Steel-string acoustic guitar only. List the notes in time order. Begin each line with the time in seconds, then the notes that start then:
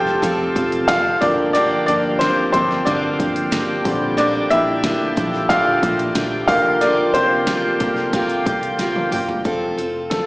Already playing: C4 F4 A4
0.22 F3 C4 F4 A4
0.55 C4 F4 A4
0.88 F3 C4 F4 A4
1.21 F3 A#3 D4 G4
1.54 G2 D3 F3 A#3 D4 G4
1.87 F3 A#3 D4 G4
2.20 F3 A#3 D4 G4
2.52 F3 A#3 D4 G4
2.86 G2 D3 F3 A#3 D4 G4
3.19 F3 A#3 D4 G4
3.51 F3 A#3 D4 G4
3.84 F3 A#3 D4 G4
4.17 A#2 D3 F3 A#3 D4 G4
4.50 F3 A#3 D4 G4
4.83 F3 A#3 D4 G4
5.16 F3 A#3 D4 G4
5.49 A#2 D3 F3 A#3 D4 G4
5.82 F3 A#3 D4 G4
6.15 F3 A#3 D4 G4
6.48 A#3 F4 G4
6.81 C3 G3 A#3 F4 G4
7.14 A#3 F4 G4
7.46 G3 A#3 F4 G4
7.80 A#3 F4 G4
8.13 C3 G3 A#3 F4 G4
8.45 A#3 F4 G4
8.78 G3 A#3 F4 G4
9.12 A#3 F4 G4
9.44 F3 C4 F4 A4
9.77 C4 F4 A4
10.10 F3 C4 F4 A4